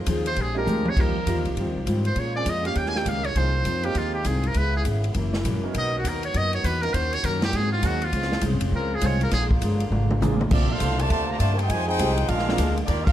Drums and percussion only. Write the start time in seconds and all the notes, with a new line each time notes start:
0.06 kick, hi-hat pedal, ride
0.26 ride
0.36 kick, ride
0.67 hi-hat pedal, high tom
0.85 high tom
0.97 kick, crash
1.27 kick, hi-hat pedal, ride
1.45 ride
1.56 kick, ride
1.86 kick, hi-hat pedal, ride
2.05 ride
2.16 kick, ride
2.46 kick, hi-hat pedal, ride
2.65 ride
2.75 kick, ride
2.86 snare
2.96 snare
3.06 kick, hi-hat pedal, ride
3.24 ride
3.35 kick, ride
3.65 kick, hi-hat pedal, ride
3.83 ride
3.95 kick, ride
4.25 kick, hi-hat pedal, ride
4.43 ride
4.54 kick, ride
4.85 kick, hi-hat pedal, ride
5.04 ride
5.14 kick, ride
5.34 snare
5.45 kick, hi-hat pedal, ride
5.74 kick, ride
6.04 kick, hi-hat pedal, ride
6.23 ride
6.34 kick, ride
6.53 ride
6.64 kick, hi-hat pedal, ride
6.83 ride
6.94 kick, ride
7.13 ride
7.24 kick, hi-hat pedal, ride
7.42 snare, ride
7.53 kick, ride
7.83 kick, hi-hat pedal, ride
8.02 ride
8.12 kick, ride
8.22 snare
8.32 snare
8.41 kick, hi-hat pedal, ride
8.61 ride
8.72 kick
9.01 kick, hi-hat pedal, ride
9.21 ride
9.31 kick, snare, ride
9.51 kick
9.62 kick, hi-hat pedal, ride
9.80 ride
9.92 mid tom
10.11 mid tom
10.22 hi-hat pedal, mid tom
10.41 mid tom
10.51 kick, crash
10.80 kick, hi-hat pedal, ride
10.99 ride
11.10 kick, ride
11.40 kick, hi-hat pedal, ride
11.59 ride
11.70 kick, ride
11.99 kick, hi-hat pedal, ride
12.17 ride
12.28 kick, ride
12.39 snare
12.49 snare
12.58 kick, hi-hat pedal, ride
12.77 ride
12.88 kick, ride
13.07 kick, crash